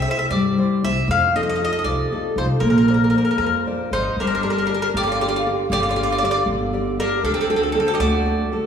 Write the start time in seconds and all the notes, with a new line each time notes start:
0.02 E5
0.08 E4 A#4 C5 E5
0.19 E5
0.30 G2 G3 D5
0.58 E4 A#4 C5
0.83 C2 E4 A#4 C5 E5
1.08 F2 F3 F5
1.35 D#4 F4 A4 D#5
1.43 D#5
1.49 D#5
1.56 D#5
1.61 D#4 F4 A4 D#5
1.73 D#5
1.79 D#5
1.84 C2 C3 D5
2.12 D#4 F4 A4
2.36 C2 D#4 F4 A4 C5
2.60 A#1 A#3 A#4
2.70 A#4
2.78 A#4
2.88 A#4 C5 D5
2.94 A#4
3.04 A#4
3.10 A#4
3.14 A#4 C5 D5
3.25 A#4
3.31 A#4
3.38 F2 F3 A#4
3.47 A#4
3.67 A#4 C5 D5
3.91 G#1 D#4 A#4 C5 D5
4.16 G1 G3 A#4
4.21 D4
4.27 D4 A#4
4.35 D4 A#4
4.43 D4 G4 A#4 D5
4.50 D4 A#4
4.58 D4 A#4
4.66 D4 G4 A#4
4.70 D5
4.74 D4 A#4
4.82 D4 A#4
4.94 G1 D3 D5
4.98 G4
5.03 F4 D5
5.12 F4 D5
5.21 F4 G4 A#4 D5
5.29 F4 D5
5.36 F4 D5
5.46 G4 A#4 D5
5.70 G1 D3 G4 D5
5.80 F4 D5
5.89 F4 D5
5.96 F4 G4 A#4 D5
6.03 F4 D5
6.10 F4 D5
6.15 F4 D5
6.23 F4 G4 A#4 D5
6.31 F4 D5
6.46 G1 D3
6.73 G4 A#4 D5
6.99 D4 G4 A#4 D5
7.23 D2 D3 D4 A4
7.34 C4 A4
7.41 C4 A4
7.50 C4 D4 F#4 A4
7.56 C4 A4
7.63 C4 A4
7.72 C4 D4 F#4 A4
7.80 C4 A4
7.87 C4 A4
7.94 G4 D#5
7.99 D2 A3 F#4 D5
8.26 D4 F#4 A4
8.52 D4 F#4 A4